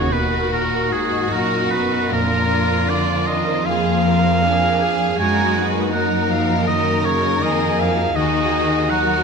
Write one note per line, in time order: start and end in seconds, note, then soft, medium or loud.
0.00 1.27 D#2 medium
0.00 0.12 C#3 medium
0.00 2.15 D#3 medium
0.00 0.51 A#3 soft
0.00 0.70 D#4 medium
0.00 0.49 F#4 medium
0.00 0.90 F#4 medium
0.00 1.29 F#4 medium
0.00 1.30 A#4 medium
0.00 0.14 C#5 medium
0.00 1.11 D#5 medium
0.00 0.11 F#5 medium
0.00 1.51 A#5 medium
0.12 0.51 B2 medium
0.12 0.52 B4 medium
0.12 1.30 F#5 medium
0.32 1.91 A#4 medium
0.50 0.91 A#2 medium
0.50 2.29 A#3 soft
0.50 1.30 F#4 medium
0.50 2.08 F#4 medium
0.50 0.93 A#4 medium
0.71 2.14 D#4 soft
0.91 1.32 G#2 medium
0.91 2.14 F#4 medium
0.91 1.33 G#4 medium
1.12 2.15 D#5 medium
1.30 2.11 F#2 medium
1.30 1.71 A#2 medium
1.30 2.11 D#4 medium
1.30 2.09 F#4 medium
1.30 3.61 A#4 medium
1.30 1.73 A#4 medium
1.30 1.71 F#5 medium
1.52 5.42 A#5 medium
1.71 2.12 B2 medium
1.71 2.11 B4 medium
1.71 2.15 F#5 medium
1.92 2.67 A#4 medium
2.10 5.18 F2 medium
2.10 5.21 F2 medium
2.10 2.88 A#2 medium
2.10 2.49 D4 medium
2.10 3.64 F4 medium
2.10 2.88 A#4 medium
2.10 2.91 A#4 medium
2.30 3.83 A#3 medium
2.49 4.02 D4 medium
2.49 3.63 D4 medium
2.68 4.21 A#4 medium
2.87 3.27 D3 medium
2.87 4.39 F4 medium
2.87 3.25 D5 medium
2.87 3.28 D5 medium
3.07 4.60 G#5 medium
3.26 3.65 D#3 medium
3.26 4.40 D5 medium
3.26 3.67 D#5 medium
3.46 4.99 G#4 medium
3.65 5.21 F3 soft
3.65 5.18 F3 medium
3.65 4.40 A#3 medium
3.65 4.04 G#4 medium
3.65 5.18 F5 loud
3.84 5.36 A#3 medium
4.04 5.21 D4 medium
4.04 4.42 G#4 medium
4.04 4.42 A#4 medium
4.23 5.73 A#4 medium
4.42 5.19 D4 medium
4.42 4.79 G#4 medium
4.42 5.19 G#4 medium
4.42 4.81 A#4 medium
4.42 4.80 D5 medium
4.61 5.21 G#5 medium
4.81 5.18 G#4 medium
4.81 5.19 G#4 medium
4.81 5.21 D5 medium
5.00 5.21 G#4 medium
5.17 6.66 F#2 medium
5.17 7.38 F#2 medium
5.17 5.91 G#3 medium
5.17 5.92 D#4 medium
5.17 5.92 F#4 medium
5.17 5.94 F#4 medium
5.17 5.55 A#4 medium
5.17 5.66 G#5 medium
5.37 6.84 A#3 medium
5.56 7.03 D#4 medium
5.56 5.93 B4 medium
5.74 7.22 A#4 medium
5.92 6.29 F#3 medium
5.92 7.40 A#3 medium
5.92 6.66 D#4 medium
5.92 7.39 A#4 medium
5.92 6.29 D#5 medium
5.92 6.32 F#5 medium
6.11 7.59 F#5 medium
6.29 6.67 F3 medium
6.29 7.40 D#5 medium
6.29 6.66 F5 medium
6.48 7.95 F#4 medium
6.66 8.18 F#2 medium
6.66 7.04 D#3 medium
6.66 8.12 D#4 medium
6.66 8.15 A#4 medium
6.66 7.07 D#5 medium
6.86 9.23 A#3 medium
7.04 7.41 C#3 medium
7.04 8.32 D#4 medium
7.04 7.44 C#5 medium
7.23 9.23 A#4 medium
7.41 8.15 F2 medium
7.41 7.78 D#3 medium
7.41 8.14 A#3 medium
7.41 8.15 G#4 medium
7.41 7.77 D#5 medium
7.41 7.81 D#5 medium
7.60 8.88 F#5 medium
7.78 8.14 F3 medium
7.78 8.70 D#5 medium
7.78 8.17 F5 medium
7.96 8.51 F#4 medium
8.15 9.23 D#2 medium
8.15 9.23 D#3 medium
8.15 8.88 D#3 medium
8.15 8.88 D#4 medium
8.15 8.87 F#4 medium
8.15 8.51 F#4 medium
8.15 8.88 G#4 medium
8.15 8.91 D#5 loud
8.33 9.23 D#4 medium
8.52 9.23 F#4 soft
8.52 9.23 F#4 medium
8.71 9.23 D#5 medium
8.88 9.23 F#3 medium
8.88 9.23 D#4 medium
8.88 9.23 F#4 medium
8.88 9.23 A#4 medium
8.88 9.23 F#5 medium
9.07 9.23 A#5 medium